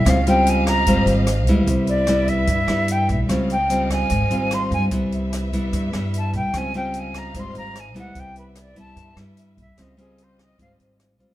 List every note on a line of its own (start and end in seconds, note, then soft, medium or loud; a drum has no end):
0.00 0.11 E5 medium
0.05 0.83 C#2 medium
0.05 0.84 C#3 soft
0.05 0.17 G3 soft
0.05 0.18 C4 soft
0.05 0.18 F4 medium
0.05 1.65 G4 medium
0.05 1.65 D#5 medium
0.05 1.66 F5 medium
0.05 kick medium
0.05 cross-stick medium
0.05 closed hi-hat soft
0.09 0.27 F5 medium
0.27 0.84 G3 medium
0.27 0.84 C4 medium
0.27 0.84 F4 medium
0.27 0.50 G5 medium
0.27 closed hi-hat soft
0.47 0.66 G#5 medium
0.47 closed hi-hat soft
0.66 1.04 A#5 medium
0.66 kick soft
0.66 cross-stick medium
0.66 closed hi-hat soft
0.86 1.05 G#1 medium
0.86 1.66 G#2 medium
0.86 1.27 G3 medium
0.86 1.28 C4 soft
0.86 1.27 F4 medium
0.86 kick medium
0.86 closed hi-hat soft
1.06 1.47 G#1 medium
1.06 closed hi-hat soft
1.27 cross-stick medium
1.27 closed hi-hat soft
1.47 1.66 C#2 medium
1.47 2.07 G3 medium
1.47 2.08 B3 medium
1.47 2.07 E4 medium
1.47 kick soft
1.47 closed hi-hat soft
1.67 2.44 C2 medium
1.67 2.46 C3 soft
1.67 3.27 B4 medium
1.67 3.27 E5 medium
1.67 kick medium
1.67 closed hi-hat soft
1.87 2.30 D5 medium
1.87 closed hi-hat soft
2.07 2.48 G3 medium
2.07 2.49 B3 medium
2.07 2.48 E4 medium
2.07 cross-stick medium
2.07 closed hi-hat soft
2.28 2.93 E5 medium
2.28 kick soft
2.28 closed hi-hat soft
2.47 2.66 G2 medium
2.47 3.27 G2 medium
2.47 kick medium
2.47 closed hi-hat soft
2.67 3.10 G2 medium
2.67 3.26 G3 medium
2.67 3.26 B3 medium
2.67 3.26 E4 medium
2.67 cross-stick medium
2.67 closed hi-hat soft
2.88 3.10 G5 medium
2.88 closed hi-hat soft
3.08 3.27 B1 medium
3.08 3.20 E5 soft
3.08 kick soft
3.08 closed hi-hat soft
3.29 4.06 C#2 medium
3.29 4.08 C#3 medium
3.29 4.89 G3 medium
3.29 3.55 G3 soft
3.29 3.55 C4 soft
3.29 3.55 F4 medium
3.29 4.89 D#5 medium
3.29 4.89 F5 medium
3.29 kick soft
3.29 cross-stick soft
3.29 closed hi-hat soft
3.50 3.88 G5 medium
3.50 closed hi-hat soft
3.69 4.10 G3 medium
3.69 4.10 C4 medium
3.69 4.10 F4 medium
3.69 closed hi-hat soft
3.90 4.55 G#5 medium
3.90 kick soft
3.90 cross-stick medium
3.90 closed hi-hat soft
4.10 4.29 G#1 medium
4.10 4.89 G#2 medium
4.10 kick medium
4.10 closed hi-hat soft
4.30 4.72 G#1 medium
4.30 4.88 G3 medium
4.30 4.88 C4 soft
4.30 4.88 F4 medium
4.30 closed hi-hat soft
4.51 4.72 C6 medium
4.51 cross-stick medium
4.51 closed hi-hat soft
4.71 4.90 G2 medium
4.71 4.85 G#5 medium
4.71 kick soft
4.71 closed hi-hat soft
4.91 5.68 C2 medium
4.91 5.70 C3 soft
4.91 5.49 G3 soft
4.91 5.49 B3 soft
4.91 5.49 E4 medium
4.91 6.52 B4 medium
4.91 6.52 E5 medium
4.91 kick soft
4.91 closed hi-hat soft
5.12 closed hi-hat soft
5.33 cross-stick soft
5.33 closed hi-hat soft
5.53 5.90 G3 medium
5.53 5.90 B3 medium
5.53 5.90 E4 medium
5.53 kick soft
5.53 closed hi-hat soft
5.73 5.91 G2 medium
5.73 6.52 G2 medium
5.73 kick medium
5.73 closed hi-hat soft
5.93 6.35 G2 medium
5.93 6.52 G3 medium
5.93 6.53 B3 medium
5.93 6.53 E4 medium
5.93 cross-stick medium
5.93 closed hi-hat soft
6.14 6.34 A5 medium
6.14 closed hi-hat soft
6.33 6.52 C2 medium
6.33 6.59 G5 medium
6.33 kick soft
6.33 closed hi-hat soft
6.54 7.30 C#2 medium
6.54 7.33 C#3 soft
6.54 6.71 G3 soft
6.54 6.71 C4 medium
6.54 6.72 F4 medium
6.54 8.14 G4 medium
6.54 8.15 D#5 medium
6.54 8.15 F5 medium
6.54 6.75 G#5 medium
6.54 kick soft
6.54 cross-stick soft
6.54 closed hi-hat soft
6.74 7.31 G3 medium
6.74 7.32 C4 medium
6.74 7.32 F4 medium
6.74 7.00 G5 medium
6.74 closed hi-hat soft
6.94 closed hi-hat soft
6.99 7.19 G#5 medium
7.14 7.41 A#5 medium
7.14 kick soft
7.14 cross-stick medium
7.14 closed hi-hat soft
7.34 7.53 G#1 medium
7.34 8.14 G#2 soft
7.34 7.75 G3 soft
7.34 7.75 C4 soft
7.34 7.75 F4 medium
7.34 kick soft
7.34 closed hi-hat soft
7.39 7.57 C6 medium
7.55 7.95 G#1 medium
7.55 7.81 A#5 medium
7.55 closed hi-hat soft
7.75 7.97 G#5 medium
7.75 cross-stick medium
7.75 closed hi-hat soft
7.94 8.14 C#2 medium
7.94 8.72 G3 medium
7.94 8.73 B3 medium
7.94 8.73 E4 medium
7.94 8.21 F#5 medium
7.94 kick soft
7.94 closed hi-hat soft
8.15 8.92 C2 medium
8.15 8.94 C3 soft
8.15 9.77 B4 medium
8.15 9.77 E5 medium
8.15 kick soft
8.15 closed hi-hat soft
8.19 8.37 G5 medium
8.36 8.62 B4 soft
8.36 closed hi-hat soft
8.55 cross-stick medium
8.55 closed hi-hat soft
8.60 8.78 D5 medium
8.76 9.13 G3 medium
8.76 9.13 B3 medium
8.76 9.14 E4 medium
8.76 9.15 A5 medium
8.76 kick soft
8.76 closed hi-hat soft
8.96 9.15 G2 medium
8.96 9.76 G2 medium
8.96 kick soft
8.96 closed hi-hat soft
9.16 9.59 G2 medium
9.16 9.76 G3 medium
9.16 9.76 B3 soft
9.16 9.77 E4 medium
9.16 cross-stick medium
9.16 closed hi-hat soft
9.37 closed hi-hat soft
9.57 9.76 C2 medium
9.57 9.83 E5 medium
9.57 kick soft
9.57 closed hi-hat soft
9.77 10.54 C#2 medium
9.77 10.57 C#3 soft
9.77 9.95 G3 soft
9.77 9.95 C4 soft
9.77 11.34 F4 medium
9.77 9.95 F4 soft
9.77 11.34 G4 medium
9.77 11.34 D#5 medium
9.77 kick soft
9.77 cross-stick soft
9.77 closed hi-hat soft
9.82 9.99 D#5 medium
9.97 10.55 G3 medium
9.97 10.55 C4 medium
9.97 10.55 F4 medium
9.97 10.24 G#4 medium
9.97 closed hi-hat soft
10.18 closed hi-hat soft
10.23 10.41 C5 medium
10.39 10.59 D#5 medium
10.39 kick soft
10.39 cross-stick medium
10.39 closed hi-hat soft
10.58 10.78 G#1 medium
10.58 11.34 G#2 soft
10.58 11.16 G3 soft
10.58 11.16 C4 soft
10.58 11.17 F4 medium
10.58 10.73 F5 medium
10.58 kick soft
10.58 closed hi-hat soft
10.79 11.20 G#1 medium
10.79 closed hi-hat soft
11.00 cross-stick soft
11.00 closed hi-hat soft
11.19 11.34 C#2 medium
11.19 11.34 G3 soft
11.19 11.34 C4 medium
11.19 11.34 F4 medium
11.19 kick soft
11.19 closed hi-hat soft